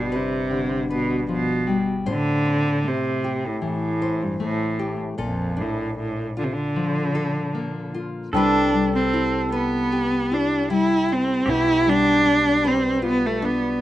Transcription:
0.00 2.02 G1 medium
0.00 0.17 B2 medium
0.00 1.66 G3 medium
0.00 2.02 D4 soft
0.00 2.02 F4 soft
0.00 0.11 B4 medium
0.12 0.91 C3 medium
0.12 0.89 B4 medium
0.50 1.28 D3 medium
0.91 1.27 B2 medium
0.91 2.02 B4 medium
1.29 1.85 B2 medium
1.29 1.67 F3 soft
1.67 2.06 G3 medium
2.06 5.15 A1 medium
2.06 5.17 A2 medium
2.06 4.01 C5 medium
2.10 2.89 D3 medium
2.46 5.19 C4 soft
2.84 3.48 C3 medium
2.84 4.39 A3 medium
3.24 4.78 G4 medium
3.46 3.64 A2 medium
3.62 5.14 E3 medium
3.66 4.25 A2 medium
4.02 5.14 C5 medium
4.23 4.42 G2 medium
4.40 4.97 A2 medium
4.40 5.14 A3 medium
4.79 5.14 G4 soft
5.18 8.29 A#1 medium
5.18 8.28 A#2 medium
5.18 7.14 A4 medium
5.22 5.62 F2 medium
5.57 8.28 D4 soft
5.61 5.98 A2 medium
6.00 6.35 A2 medium
6.37 6.46 D3 medium
6.37 7.93 F4 medium
6.44 6.55 C3 medium
6.54 7.96 D3 medium
6.76 8.29 F3 medium
7.15 8.33 A4 medium
7.55 8.29 A#3 medium
7.94 8.29 F4 soft
8.33 11.42 C2 medium
8.33 11.42 C3 medium
8.33 8.73 G3 medium
8.33 8.89 D4 medium
8.33 9.12 E4 medium
8.33 9.92 G4 medium
8.33 11.42 A4 medium
8.33 9.52 B4 medium
8.74 10.69 G3 medium
8.95 9.48 C4 medium
9.14 10.30 E4 medium
9.52 10.35 B3 medium
9.52 11.42 B4 medium
9.92 11.43 G4 medium
10.31 10.71 D4 medium
10.31 11.07 E4 medium
10.70 11.85 G3 medium
10.70 11.14 E4 medium
11.09 11.42 E4 medium
11.13 11.51 C4 medium
11.46 13.81 B1 medium
11.46 13.81 B2 medium
11.46 13.81 G4 medium
11.50 11.91 E4 loud
11.86 13.81 G3 medium
11.86 12.69 D4 loud
12.25 13.42 D4 medium
12.65 13.04 C4 medium
12.65 13.81 B4 medium
13.02 13.80 F4 medium
13.07 13.28 B3 medium
13.26 13.47 A3 medium
13.42 13.81 B3 medium
13.42 13.81 D4 medium

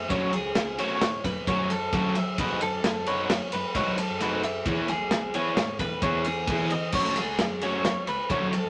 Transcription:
0.00 0.11 E5 medium
0.09 0.21 F#2 loud
0.09 0.33 F#3 loud
0.09 0.32 A3 medium
0.09 0.31 C#4 loud
0.09 0.31 F#4 loud
0.09 0.34 C#5 loud
0.09 kick loud
0.09 ride loud
0.33 0.55 C#2 loud
0.33 0.80 G#4 medium
0.33 muted overdriven electric guitar stroke medium
0.33 ride medium
0.55 0.77 C#2 medium
0.55 muted overdriven electric guitar stroke soft
0.55 snare loud
0.55 ride loud
0.78 1.01 F#3 medium
0.78 1.01 A3 medium
0.78 1.01 C#4 loud
0.78 1.02 F#4 loud
0.78 1.25 C#5 medium
0.78 ride medium
1.01 1.23 A2 loud
1.01 muted overdriven electric guitar stroke medium
1.01 snare loud
1.01 ride loud
1.24 1.35 F#2 medium
1.24 1.48 B4 medium
1.24 muted overdriven electric guitar stroke medium
1.24 kick medium
1.24 snare soft
1.24 ride medium
1.47 1.89 F#2 loud
1.47 1.70 F#3 medium
1.47 1.71 A3 medium
1.47 1.70 C#4 medium
1.47 1.70 F#4 medium
1.47 1.71 C#5 medium
1.47 kick loud
1.47 snare soft
1.47 ride loud
1.70 2.16 A4 medium
1.70 muted overdriven electric guitar stroke medium
1.70 ride medium
1.93 2.40 F#3 medium
1.93 2.16 F#3 loud
1.93 2.16 A3 loud
1.93 2.16 C#4 loud
1.93 2.16 F#4 loud
1.93 kick loud
1.93 snare soft
1.93 ride loud
2.15 2.39 E5 medium
2.15 muted overdriven electric guitar stroke medium
2.15 ride medium
2.38 2.49 F#2 loud
2.38 2.62 A3 loud
2.38 2.62 D#4 loud
2.38 2.61 F#4 loud
2.38 2.61 B4 loud
2.38 2.62 D#5 loud
2.38 kick loud
2.38 ride loud
2.61 2.82 F#2 loud
2.61 3.08 A4 medium
2.61 muted overdriven electric guitar stroke medium
2.61 ride medium
2.84 3.26 F#2 medium
2.84 muted overdriven electric guitar stroke soft
2.84 snare loud
2.84 ride loud
3.06 3.30 A3 medium
3.06 3.30 D#4 medium
3.06 3.31 F#4 medium
3.06 3.30 B4 loud
3.06 3.53 C#5 medium
3.06 ride medium
3.30 3.40 F#2 loud
3.30 muted overdriven electric guitar stroke soft
3.30 snare loud
3.30 ride loud
3.52 3.63 F#2 medium
3.52 3.76 B4 medium
3.52 muted overdriven electric guitar stroke medium
3.52 ride medium
3.74 3.85 G#3 loud
3.74 3.98 A3 medium
3.74 3.98 D#4 medium
3.74 3.97 F#4 loud
3.74 3.97 B4 loud
3.74 3.99 C#5 medium
3.74 kick loud
3.74 snare soft
3.74 ride loud
3.86 4.07 F#3 loud
3.98 4.44 A4 medium
3.98 muted overdriven electric guitar stroke medium
3.98 ride medium
4.10 4.63 F#2 medium
4.20 4.44 A3 medium
4.20 4.44 D#4 loud
4.20 4.44 F#4 loud
4.20 4.43 B4 loud
4.20 ride loud
4.43 4.67 E5 medium
4.43 muted overdriven electric guitar stroke medium
4.43 ride medium
4.66 4.76 E2 loud
4.66 4.89 E3 loud
4.66 4.89 B3 loud
4.66 4.89 E4 loud
4.66 4.88 G#4 loud
4.66 4.89 C#5 loud
4.66 kick loud
4.66 ride loud
4.88 5.10 B1 loud
4.88 5.35 G#4 medium
4.88 muted overdriven electric guitar stroke medium
4.88 snare soft
4.88 ride medium
5.11 5.33 B1 medium
5.11 muted overdriven electric guitar stroke soft
5.11 snare loud
5.11 ride loud
5.34 5.58 E3 medium
5.34 5.58 B3 medium
5.34 5.58 E4 loud
5.34 5.57 G#4 medium
5.34 5.80 C#5 medium
5.34 ride medium
5.57 5.78 G#2 medium
5.57 muted overdriven electric guitar stroke soft
5.57 snare loud
5.57 ride loud
5.79 5.90 E2 loud
5.79 6.03 B4 medium
5.79 muted overdriven electric guitar stroke medium
5.79 kick medium
5.79 snare soft
5.79 ride medium
6.02 6.44 E2 loud
6.02 6.26 E3 medium
6.02 6.26 B3 loud
6.02 6.26 E4 medium
6.02 6.25 G#4 medium
6.02 6.26 C#5 medium
6.02 kick loud
6.02 ride loud
6.24 6.71 G#4 medium
6.24 muted overdriven electric guitar stroke medium
6.24 ride medium
6.47 6.94 E3 medium
6.47 6.72 E3 medium
6.47 6.72 B3 loud
6.47 6.72 E4 loud
6.47 6.71 G#4 loud
6.47 kick loud
6.47 ride loud
6.70 6.94 D#5 medium
6.70 muted overdriven electric guitar stroke medium
6.70 ride medium
6.92 7.04 F#2 loud
6.92 7.17 F#3 loud
6.92 7.17 A3 loud
6.92 7.17 C#4 loud
6.92 7.16 F#4 loud
6.92 7.17 C#5 loud
6.92 kick loud
6.92 crash loud
7.16 7.38 C#2 medium
7.16 7.63 G#4 medium
7.16 muted overdriven electric guitar stroke medium
7.16 snare soft
7.16 ride medium
7.38 7.81 F#2 medium
7.38 muted overdriven electric guitar stroke soft
7.38 snare loud
7.38 ride loud
7.61 7.84 F#3 medium
7.61 7.84 A3 medium
7.61 7.85 C#4 loud
7.61 7.85 F#4 loud
7.61 8.08 C#5 medium
7.61 snare soft
7.61 ride medium
7.85 7.95 F#2 loud
7.85 muted overdriven electric guitar stroke soft
7.85 snare loud
7.85 ride loud
8.07 8.18 C#2 medium
8.07 8.31 B4 medium
8.07 muted overdriven electric guitar stroke medium
8.07 ride medium
8.30 8.41 D#3 medium
8.30 8.53 F#3 medium
8.30 8.53 A3 medium
8.30 8.53 C#4 loud
8.30 8.52 F#4 medium
8.30 8.53 C#5 medium
8.30 kick loud
8.30 snare soft
8.30 ride loud
8.42 8.62 F#3 loud
8.53 8.69 A4 medium
8.53 muted overdriven electric guitar stroke medium
8.53 ride medium
8.64 8.69 F#2 loud

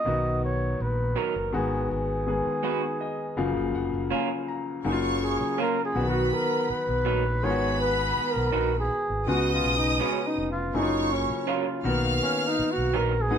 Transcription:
0.00 0.44 D#5 loud
0.05 0.72 B1 medium
0.05 1.23 D#3 medium
0.05 1.24 F#3 medium
0.05 1.24 B3 medium
0.05 1.24 F#4 medium
0.44 0.83 C#5 medium
0.80 1.13 A#1 medium
0.80 1.19 B4 medium
1.16 1.33 F#3 medium
1.16 1.33 B3 medium
1.16 1.34 D#4 medium
1.16 1.34 A#4 medium
1.16 1.55 A#4 medium
1.36 1.52 F#1 medium
1.52 1.86 G#1 medium
1.52 2.12 D#3 medium
1.52 2.12 G#3 medium
1.52 2.12 B3 medium
1.52 2.12 F#4 medium
1.52 1.90 G#4 medium
1.91 2.40 G#1 medium
1.91 4.08 G#4 medium
2.26 3.11 D#3 medium
2.26 3.11 G#3 medium
2.26 3.12 B3 medium
2.26 3.12 G#4 medium
2.46 muted fingered electric bass stroke soft
2.63 2.81 B3 medium
2.63 2.81 D#4 medium
2.63 2.81 F#4 medium
2.63 2.81 B4 medium
3.01 3.35 D#5 medium
3.37 3.54 F#1 medium
3.37 4.50 C#3 medium
3.37 4.50 F3 medium
3.37 4.50 F#3 medium
3.37 4.50 A#3 medium
3.37 3.72 F5 medium
3.57 3.73 F#1 medium
3.75 3.91 F1 medium
3.75 4.09 F#5 medium
3.94 4.10 F#1 medium
4.11 4.28 A#3 medium
4.11 4.28 C#4 medium
4.11 4.28 F4 medium
4.11 4.29 A#4 medium
4.11 4.45 G#5 medium
4.48 4.82 A#5 medium
4.84 5.34 F#1 medium
4.84 5.95 C#3 medium
4.84 5.93 F#3 medium
4.84 5.96 A#3 medium
4.84 4.92 D#4 medium
4.84 5.57 C#5 medium
4.84 5.57 C#6 medium
4.92 5.99 F4 medium
5.23 5.61 G#4 medium
5.41 muted fingered electric bass stroke soft
5.58 5.76 A#3 medium
5.58 5.76 C#4 medium
5.58 5.76 F4 medium
5.58 5.76 A#4 medium
5.58 5.84 A#4 medium
5.84 6.07 G#4 medium
5.95 6.28 B1 medium
5.95 6.02 D3 medium
5.95 7.13 F#3 medium
5.95 7.04 B3 medium
5.95 7.13 B3 medium
5.95 7.14 F#4 medium
5.95 7.04 B5 medium
6.01 7.16 D#3 medium
6.08 6.35 F#4 medium
6.33 6.72 A#4 medium
6.70 7.45 B4 loud
6.70 muted fingered electric bass stroke soft
6.88 7.07 B1 medium
7.05 7.39 A#1 medium
7.05 7.23 F#3 medium
7.05 7.23 B3 medium
7.05 7.23 D#4 medium
7.05 7.23 A#4 medium
7.43 8.09 G#1 medium
7.43 8.61 D#3 medium
7.43 8.61 G#3 medium
7.43 8.87 B3 medium
7.43 8.61 B3 medium
7.43 7.50 F4 medium
7.43 7.80 C#5 loud
7.43 8.87 B5 loud
7.51 8.64 F#4 medium
7.81 8.32 B4 medium
8.17 muted fingered electric bass stroke soft
8.30 8.79 A#4 medium
8.36 8.52 B1 medium
8.52 8.86 A#1 medium
8.52 8.70 B3 medium
8.52 8.70 D#4 medium
8.52 8.70 F#4 medium
8.52 8.71 B4 medium
8.79 9.30 G#4 medium
9.10 9.25 G#1 medium
9.26 9.60 C#2 loud
9.26 10.39 C#3 medium
9.26 10.39 G#3 medium
9.26 10.39 B3 medium
9.26 9.34 F4 medium
9.26 9.52 F#4 medium
9.26 10.35 D#5 medium
9.26 10.35 D#6 loud
9.34 10.43 F#4 medium
9.53 9.75 F4 medium
9.64 9.97 B1 medium
9.77 10.03 D#4 medium
10.00 10.17 G#3 medium
10.00 10.17 C#4 medium
10.00 10.28 C#4 medium
10.00 10.18 F#4 medium
10.00 10.18 B4 medium
10.26 10.50 D#4 medium
10.38 10.70 F1 medium
10.52 10.78 F4 medium
10.74 11.23 F#1 medium
10.74 11.84 C#3 medium
10.74 11.85 F#3 medium
10.74 11.83 A#3 medium
10.74 11.14 D#4 medium
10.74 10.81 E4 medium
10.74 11.46 C#5 medium
10.74 11.46 C#6 medium
10.82 11.88 F4 medium
11.12 11.50 C#4 medium
11.30 muted fingered electric bass stroke soft
11.47 11.65 F#3 medium
11.47 11.65 C#4 medium
11.47 11.65 F4 medium
11.47 11.85 F4 medium
11.47 11.65 A#4 medium
11.84 12.17 B1 medium
11.84 13.02 D#3 medium
11.84 13.02 A#3 medium
11.84 13.02 B3 medium
11.84 13.02 F#4 medium
11.84 12.93 F5 medium
11.84 12.92 F6 medium
12.22 12.49 C#4 medium
12.47 12.73 D#4 medium
12.59 muted fingered electric bass stroke soft
12.71 12.98 F#4 medium
12.78 12.93 B1 medium
12.94 13.32 A#1 loud
12.94 13.11 F#3 medium
12.94 13.11 B3 medium
12.94 13.12 D#4 medium
12.94 13.12 A#4 medium
12.94 13.23 A#4 loud
13.22 13.38 G#4 loud
13.31 13.38 G#1 loud
13.31 13.38 F#3 medium
13.31 13.38 B3 medium
13.31 13.38 D#4 medium
13.31 13.38 G#4 medium
13.31 13.38 D#5 medium
13.31 13.38 D#6 medium

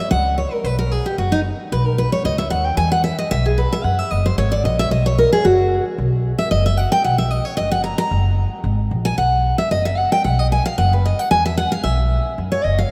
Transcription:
0.00 0.10 E5 loud
0.11 0.44 C#2 loud
0.11 0.36 F#5 loud
0.38 0.53 C#5 medium
0.53 0.64 A#4 medium
0.64 0.97 B1 medium
0.64 0.78 B4 loud
0.79 0.91 A#4 medium
0.91 1.05 G#4 medium
1.06 1.18 G4 medium
1.18 1.51 F#1 medium
1.18 1.32 F#4 medium
1.32 1.39 D#4 medium
1.72 2.05 B1 medium
1.72 1.86 B4 medium
1.86 1.98 A#4 loud
1.98 2.12 B4 medium
2.12 2.24 C#5 medium
2.24 2.47 C#2 medium
2.24 2.38 D#5 medium
2.38 2.50 E5 medium
2.50 2.74 D#2 medium
2.50 2.65 F#5 medium
2.65 2.77 G5 loud
2.77 3.10 E2 medium
2.77 2.91 G#5 loud
2.92 3.03 F#5 loud
3.04 3.18 E5 loud
3.19 3.31 D#5 medium
3.31 3.64 B1 medium
3.31 3.45 E5 loud
3.46 3.58 G#4 medium
3.58 3.72 B4 medium
3.73 3.84 E5 loud
3.84 4.01 F#2 medium
3.84 3.99 F#5 loud
3.99 4.11 E5 medium
4.11 4.34 F#1 medium
4.11 4.25 D#5 medium
4.26 4.38 C5 medium
4.38 4.61 G#1 medium
4.38 4.52 C#5 medium
4.52 4.64 D5 loud
4.64 4.87 A#1 medium
4.64 4.79 D#5 medium
4.79 4.91 E5 loud
4.91 5.24 B1 medium
4.91 5.05 D#5 medium
5.06 5.18 C#5 loud
5.18 5.32 A#4 loud
5.33 5.44 G#4 loud
5.45 5.77 F#1 medium
5.45 5.83 F#4 medium
5.98 6.31 B1 medium
6.38 6.51 E5 loud
6.51 6.84 F#1 medium
6.51 6.65 D#5 loud
6.66 6.77 E5 loud
6.77 6.91 F#5 medium
6.92 7.04 G5 loud
7.04 7.38 B1 medium
7.04 7.18 F#5 medium
7.18 7.31 E5 loud
7.31 7.45 D#5 loud
7.45 7.56 C#5 medium
7.57 7.90 F#1 medium
7.57 7.71 D#5 loud
7.71 7.83 F#5 loud
7.84 7.97 A#5 medium
7.98 8.60 A#5 loud
8.11 8.44 F#1 medium
8.64 8.87 G#1 medium
8.91 9.14 A#1 medium
9.05 9.17 G#5 loud
9.18 9.51 B1 medium
9.18 9.56 F#5 loud
9.58 9.71 E5 loud
9.71 10.04 F#1 medium
9.71 9.85 D#5 medium
9.85 9.98 E5 medium
9.98 10.12 F#5 medium
10.12 10.24 G5 loud
10.24 10.57 B1 medium
10.24 10.39 F#5 medium
10.39 10.46 D#5 loud
10.52 10.65 G#5 loud
10.66 10.77 F5 loud
10.78 11.11 F#1 medium
10.78 10.92 F#5 loud
10.93 11.05 B4 medium
11.05 11.19 D#5 medium
11.19 11.30 F#5 loud
11.31 11.64 E2 medium
11.31 11.45 G#5 loud
11.46 11.57 E5 loud
11.57 11.71 F#5 loud
11.72 11.83 F5 loud
11.84 12.17 B1 medium
11.84 12.34 E5 medium
12.38 12.54 F#2 medium
12.52 12.64 C#5 medium
12.64 12.87 F#1 medium
12.64 12.78 D#5 medium
12.79 12.91 F5 medium

